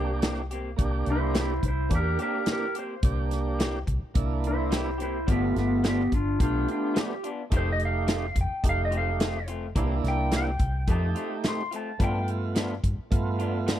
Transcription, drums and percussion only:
0.22 snare, closed hi-hat
0.51 closed hi-hat
0.79 kick, closed hi-hat
1.06 closed hi-hat
1.34 snare, closed hi-hat
1.63 kick, closed hi-hat
1.90 kick, closed hi-hat
2.19 closed hi-hat
2.46 snare, closed hi-hat
2.75 closed hi-hat
3.03 kick, closed hi-hat
3.31 snare, closed hi-hat
3.60 snare, closed hi-hat
3.87 kick, closed hi-hat
4.15 kick, closed hi-hat
4.44 closed hi-hat
4.72 snare, closed hi-hat
5.00 closed hi-hat
5.28 kick, closed hi-hat
5.56 snare, closed hi-hat
5.84 snare, closed hi-hat
6.12 kick, closed hi-hat
6.40 kick, closed hi-hat
6.68 closed hi-hat
6.96 snare, closed hi-hat
7.24 closed hi-hat
7.51 kick, closed hi-hat
7.79 closed hi-hat
8.08 snare, closed hi-hat
8.36 kick, closed hi-hat
8.64 kick, closed hi-hat
8.92 closed hi-hat
9.20 snare, closed hi-hat
9.48 closed hi-hat
9.76 kick, closed hi-hat
10.04 snare, closed hi-hat
10.31 snare, closed hi-hat
10.59 kick, closed hi-hat
10.87 kick, closed hi-hat
11.16 closed hi-hat
11.44 snare, closed hi-hat
11.72 closed hi-hat
12.00 kick, closed hi-hat
12.28 closed hi-hat
12.55 snare, closed hi-hat
12.84 kick, closed hi-hat
13.12 kick, closed hi-hat
13.39 closed hi-hat
13.68 snare, closed hi-hat

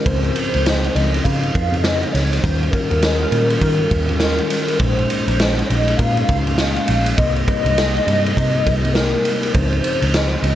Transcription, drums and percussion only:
0.06 kick, ride
0.24 ride
0.36 ride
0.54 ride
0.66 snare, ride
0.84 ride
0.96 ride
1.14 ride
1.25 kick, ride
1.43 ride
1.55 kick, ride
1.74 ride
1.84 snare, ride
2.03 ride
2.15 snare, open hi-hat, ride
2.33 ride
2.44 kick, hi-hat pedal, ride
2.63 ride
2.73 kick, ride
2.91 ride
3.02 snare, ride
3.32 ride
3.50 ride
3.61 kick, ride
3.91 kick, ride
4.09 ride
4.20 snare, ride
4.38 ride
4.50 snare, ride
4.68 ride
4.79 kick, ride
4.99 ride
5.10 ride
5.28 ride
5.40 snare, ride
5.59 ride
5.70 ride
5.88 ride
5.99 kick, ride
6.17 ride
6.29 kick, ride
6.47 ride
6.58 snare, ride
6.76 ride
6.88 ride
7.06 ride
7.18 kick, ride
7.36 ride
7.48 kick, ride
7.66 ride
7.78 snare, ride
7.97 ride
8.08 ride
8.26 ride
8.37 kick, ride
8.67 kick, ride
8.85 ride
8.95 snare, ride
9.25 ride
9.43 ride
9.54 kick, ride
9.73 ride
9.84 ride
10.02 ride
10.14 snare, ride
10.44 ride

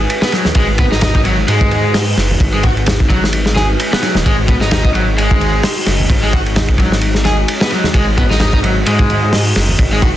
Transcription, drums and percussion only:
0.10 ride
0.22 snare
0.32 snare, ride
0.45 snare, high conga
0.55 kick, ride
0.78 kick, ride, low conga
0.92 snare
1.01 snare, ride, high conga
1.15 kick
1.25 ride
1.48 ride
1.61 kick
1.71 ride, high conga
1.94 snare, open hi-hat
2.17 snare, ride
2.31 high conga
2.40 kick, ride
2.63 kick, ride, low conga
2.77 ride
2.86 snare, ride, high conga
3.00 kick
3.10 kick, ride
3.24 snare
3.33 ride
3.46 snare
3.56 snare, ride, high conga
3.80 ride
3.93 snare
4.03 snare, ride
4.15 snare, high conga
4.26 kick, ride
4.47 kick, ride, low conga
4.61 snare
4.71 snare, ride, high conga
4.85 kick
4.95 ride
5.18 ride
5.31 kick
5.40 ride, high conga
5.63 snare, open hi-hat
5.86 snare, ride
6.00 high conga
6.10 kick, ride
6.33 kick, ride, low conga
6.46 ride
6.56 snare, ride, high conga
6.69 kick
6.78 kick, ride
6.92 snare
7.01 ride
7.15 snare
7.25 snare, ride, high conga
7.48 ride
7.61 snare
7.70 snare, ride
7.84 snare, high conga
7.94 kick, ride
8.18 kick, ride, low conga
8.31 snare
8.40 snare, ride, high conga
8.53 kick
8.64 ride
8.86 ride
8.99 kick
9.09 ride, high conga
9.33 snare, open hi-hat
9.56 snare, ride
9.69 high conga
9.79 kick, ride
10.02 kick, ride, low conga

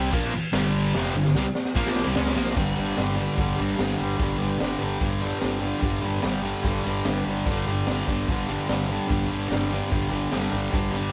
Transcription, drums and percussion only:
0.13 kick, crash
0.24 snare
0.34 crash
0.53 snare, tambourine, crash
0.74 crash
0.95 snare
1.05 snare
1.25 snare
1.34 snare, tambourine
1.55 snare
1.65 snare
1.76 kick
1.87 snare
1.96 snare
2.16 snare, tambourine
2.27 snare
2.36 snare
2.47 snare
2.57 kick, crash, tambourine
2.77 open hi-hat, tambourine
2.97 snare, open hi-hat, tambourine
3.17 open hi-hat, tambourine
3.37 kick, open hi-hat, tambourine
3.59 open hi-hat, tambourine
3.79 snare, open hi-hat, tambourine
3.99 open hi-hat, tambourine
4.19 kick, open hi-hat, tambourine
4.40 open hi-hat, tambourine
4.60 snare, open hi-hat, tambourine
4.80 open hi-hat, tambourine
5.01 kick, open hi-hat, tambourine
5.21 open hi-hat, tambourine
5.41 snare, open hi-hat, tambourine
5.61 open hi-hat, tambourine
5.82 kick, open hi-hat, tambourine
6.03 open hi-hat, tambourine
6.23 snare, open hi-hat, tambourine
6.44 open hi-hat, tambourine
6.64 kick, open hi-hat, tambourine
6.84 open hi-hat, tambourine
7.05 snare, open hi-hat, tambourine
7.26 open hi-hat, tambourine
7.46 kick, open hi-hat, tambourine
7.66 open hi-hat, tambourine
7.87 snare, open hi-hat, tambourine
8.07 kick, open hi-hat, tambourine
8.28 kick, open hi-hat, tambourine
8.49 open hi-hat, tambourine
8.69 snare, open hi-hat, tambourine
8.90 open hi-hat
9.09 kick, open hi-hat, tambourine
9.29 open hi-hat, tambourine
9.49 snare, open hi-hat, tambourine
9.71 open hi-hat, tambourine
9.83 snare
9.92 kick, open hi-hat, tambourine
10.11 open hi-hat, tambourine
10.31 snare, open hi-hat, tambourine
10.53 open hi-hat, tambourine
10.73 kick, open hi-hat, tambourine
10.94 open hi-hat, tambourine

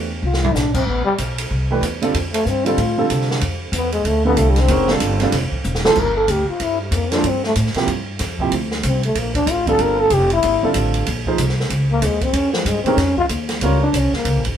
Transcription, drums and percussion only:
0.33 snare
0.44 floor tom
0.55 snare, hi-hat pedal
0.74 kick, crash
1.18 hi-hat pedal, ride
1.38 ride
1.83 hi-hat pedal, ride
2.02 ride
2.14 ride
2.34 ride
2.46 hi-hat pedal
2.66 ride
2.78 ride
3.10 hi-hat pedal, ride
3.21 snare
3.31 snare
3.41 ride
3.73 hi-hat pedal, ride
3.92 ride
4.05 ride
4.37 hi-hat pedal, ride
4.56 snare, ride
4.68 ride
4.88 snare
5.00 hi-hat pedal, ride
5.20 snare, ride
5.32 snare, ride
5.52 kick
5.64 hi-hat pedal
5.75 snare
5.85 snare
5.95 kick, crash
6.28 hi-hat pedal, ride
6.60 ride
6.92 hi-hat pedal, ride
7.12 snare, ride
7.24 ride
7.44 snare
7.56 hi-hat pedal, ride
7.66 snare
7.74 snare, ride
7.88 ride
8.19 snare, hi-hat pedal, ride
8.39 kick
8.52 ride
8.71 snare
8.83 hi-hat pedal, ride
9.03 ride
9.15 ride
9.35 kick, ride
9.47 hi-hat pedal, ride
9.67 kick, ride
9.79 ride
10.10 hi-hat pedal, ride
10.30 ride
10.43 ride
10.74 hi-hat pedal, ride
10.94 ride
11.07 ride
11.26 kick
11.38 hi-hat pedal, ride
11.49 snare
11.60 snare
11.70 ride
12.02 hi-hat pedal, ride
12.21 kick, ride
12.33 ride
12.53 snare
12.66 hi-hat pedal, ride
12.86 ride
12.98 snare, ride
13.17 kick
13.29 hi-hat pedal, ride
13.49 snare, ride
13.61 ride
13.94 hi-hat pedal, ride
14.13 snare
14.25 ride
14.45 ride

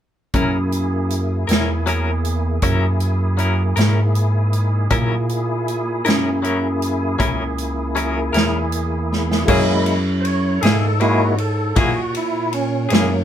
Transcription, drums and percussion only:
0.33 kick, closed hi-hat
0.72 closed hi-hat
1.10 closed hi-hat
1.49 snare, closed hi-hat
1.87 closed hi-hat
2.25 closed hi-hat
2.62 kick, closed hi-hat
3.00 closed hi-hat
3.38 closed hi-hat
3.76 snare, closed hi-hat
4.15 closed hi-hat
4.53 closed hi-hat
4.90 kick, closed hi-hat
5.29 closed hi-hat
5.68 closed hi-hat
6.06 snare, closed hi-hat
6.44 closed hi-hat
6.82 closed hi-hat
7.20 kick, closed hi-hat
7.58 closed hi-hat
7.96 closed hi-hat
8.34 snare, closed hi-hat
8.72 closed hi-hat
9.13 snare
9.32 snare
9.48 kick, crash
9.86 ride
10.25 ride
10.63 snare, ride
11.01 ride
11.38 ride
11.76 kick, ride
12.15 ride
12.53 ride
12.90 snare, ride

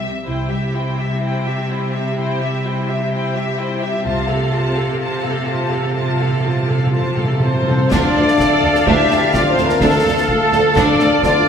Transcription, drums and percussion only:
7.92 concert bass drum, snare, crash
8.28 snare
8.40 concert bass drum, snare
8.75 snare
8.87 concert bass drum
9.11 snare
9.34 concert bass drum, snare
9.58 snare
9.69 snare
9.81 concert bass drum, snare
10.29 concert bass drum
10.52 snare
10.76 concert bass drum, snare
11.00 snare
11.23 concert bass drum, snare

